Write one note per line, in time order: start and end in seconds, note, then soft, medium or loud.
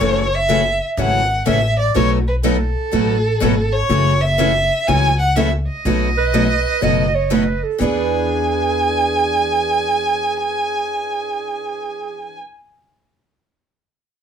0.00 0.78 F#1 medium
0.00 0.22 C#3 medium
0.00 0.22 E3 medium
0.00 0.23 F#3 medium
0.00 0.23 A3 medium
0.00 0.23 C#4 medium
0.00 0.24 E4 medium
0.00 0.23 F#4 medium
0.00 0.24 A4 medium
0.00 0.36 C#5 medium
0.35 0.82 E5 loud
0.49 0.61 C#3 medium
0.49 0.61 E3 medium
0.49 0.61 F#3 medium
0.49 0.61 A3 medium
0.49 0.61 C#4 medium
0.49 0.62 E4 loud
0.49 0.61 F#4 medium
0.49 0.62 A4 medium
0.97 1.39 G#1 medium
0.97 1.20 C#3 medium
0.97 1.20 E3 medium
0.97 1.20 F#3 medium
0.97 1.20 A3 medium
0.97 1.20 C#4 medium
0.97 1.20 E4 medium
0.97 1.21 F#4 medium
0.97 1.21 A4 medium
0.97 1.44 F#5 medium
1.46 1.88 A1 medium
1.46 1.58 C#3 medium
1.46 1.58 E3 medium
1.46 1.58 F#3 medium
1.46 1.58 A3 medium
1.46 1.58 C#4 medium
1.46 1.58 E4 loud
1.46 1.58 F#4 medium
1.46 1.59 A4 medium
1.46 1.77 E5 medium
1.80 1.95 D5 medium
1.94 2.73 B1 medium
1.94 2.17 B2 medium
1.94 2.17 F#3 medium
1.94 2.17 A3 medium
1.94 2.17 D#4 medium
1.94 2.17 F#4 medium
1.94 2.17 B4 medium
1.94 2.10 C#5 loud
2.28 2.35 B4 medium
2.43 2.55 B2 medium
2.43 2.56 F#3 medium
2.43 2.55 A3 medium
2.43 2.56 D#4 medium
2.43 2.56 F#4 medium
2.43 3.74 A4 medium
2.43 2.56 B4 medium
2.92 3.34 A1 medium
2.92 3.15 B2 medium
2.92 3.15 F#3 medium
2.92 3.15 A3 medium
2.92 3.15 D#4 medium
2.92 3.15 F#4 medium
2.92 3.15 B4 medium
3.42 3.83 G#1 medium
3.42 3.54 B2 medium
3.42 3.53 F#3 medium
3.42 3.54 A3 medium
3.42 3.54 D#4 medium
3.42 3.54 F#4 medium
3.42 3.54 B4 medium
3.72 4.23 C#5 loud
3.89 4.68 F#1 medium
3.89 4.12 C#3 medium
3.89 4.12 E3 medium
3.89 4.13 F#3 medium
3.89 4.12 A3 medium
3.89 4.13 C#4 medium
3.89 4.13 E4 medium
3.89 4.12 F#4 medium
3.89 4.14 A4 medium
4.21 4.89 E5 loud
4.38 4.50 C#3 medium
4.38 4.51 E3 medium
4.38 4.51 F#3 medium
4.38 4.51 A3 medium
4.38 4.51 C#4 medium
4.38 4.51 E4 medium
4.38 4.51 F#4 medium
4.38 4.52 A4 medium
4.88 5.66 C#2 medium
4.88 5.10 C#3 medium
4.88 5.10 E3 medium
4.88 5.10 F#3 medium
4.88 5.10 A3 medium
4.88 5.10 C#4 medium
4.88 5.11 E4 medium
4.88 5.10 F#4 medium
4.88 5.11 A4 medium
4.88 5.18 G#5 loud
5.19 5.35 F#5 medium
5.36 5.48 C#3 medium
5.36 5.48 E3 medium
5.36 5.48 F#3 medium
5.36 5.48 A3 medium
5.36 5.48 C#4 medium
5.36 5.49 E4 medium
5.36 5.49 F#4 medium
5.36 5.49 A4 medium
5.36 5.51 E5 medium
5.69 7.60 D#5 medium
5.85 6.63 B1 medium
5.85 6.07 B2 medium
5.85 6.08 F#3 medium
5.85 6.08 A3 medium
5.85 6.08 D#4 medium
5.85 6.08 F#4 medium
5.85 6.08 B4 medium
6.18 6.84 B4 medium
6.34 6.46 B2 medium
6.34 6.46 F#3 medium
6.34 6.46 A3 medium
6.34 6.46 D#4 medium
6.34 6.46 F#4 medium
6.34 6.46 B4 medium
6.82 7.61 F#1 medium
6.82 7.05 B2 medium
6.82 7.05 F#3 medium
6.82 7.05 A3 medium
6.82 7.05 D#4 medium
6.82 7.05 F#4 medium
6.82 7.05 B4 medium
6.82 7.16 D#5 medium
7.15 7.33 C#5 medium
7.31 7.43 B2 medium
7.31 7.43 F#3 medium
7.31 7.43 A3 medium
7.31 7.43 D#4 medium
7.31 7.44 F#4 medium
7.31 7.43 B4 medium
7.31 7.65 B4 medium
7.63 7.81 A4 medium
7.79 12.36 E2 medium
7.79 12.39 E3 medium
7.79 12.41 B3 medium
7.79 12.42 D4 medium
7.79 12.37 G#4 medium
7.79 12.42 G#4 medium
7.79 12.38 G#5 medium
7.83 12.43 B4 medium